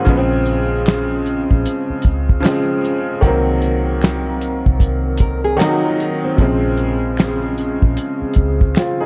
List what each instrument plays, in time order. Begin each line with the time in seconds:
Already playing: ambient pad C4 G#4
0.05 fingered electric bass A#1, upright piano C#3 F3 G#3, ambient pad C#3, kick, closed hi-hat
0.10 upright piano B3
0.17 upright piano C4
0.46 closed hi-hat
0.86 finger snap, snare, closed hi-hat
0.88 finger snap
1.26 closed hi-hat
1.51 fingered electric bass A#1, kick
1.66 closed hi-hat
1.90 muted fingered electric bass stroke
2.02 fingered electric bass C#2, kick, closed hi-hat
2.29 kick
2.40 upright piano C#3 F3, finger snap
2.44 upright piano G#3 C4, finger snap, snare, closed hi-hat
2.85 closed hi-hat
3.21 fingered electric bass C2, upright piano D#3 F#3 A#3, ambient pad D#3 A#4, kick, closed hi-hat
3.27 upright piano C4
3.62 closed hi-hat
4.01 finger snap, snare, closed hi-hat
4.04 finger snap
4.41 closed hi-hat
4.66 fingered electric bass C2, kick
4.80 kick, closed hi-hat
5.18 nylon-string guitar A#4, kick, closed hi-hat
5.44 nylon-string guitar G#4
5.57 upright piano D#3 F#3 A#3, nylon-string guitar F#4, finger snap, closed hi-hat
5.61 upright piano D#4, finger snap, snare
5.84 nylon-string guitar F4
6.00 nylon-string guitar D#4, closed hi-hat
6.24 nylon-string guitar C4
6.37 fingered electric bass A#1, upright piano C3 F3 G#3, ambient pad C#3 G#4, kick, closed hi-hat
6.42 upright piano C#3 C4
6.77 closed hi-hat
7.17 finger snap, snare, closed hi-hat
7.20 finger snap
7.58 closed hi-hat
7.82 fingered electric bass A#1, kick
7.97 closed hi-hat
8.22 muted fingered electric bass stroke
8.33 fingered electric bass C#2, kick, closed hi-hat
8.61 kick
8.75 upright piano F4, finger snap, snare, closed hi-hat
8.77 upright piano C4, finger snap
9.00 upright piano D#4 G#4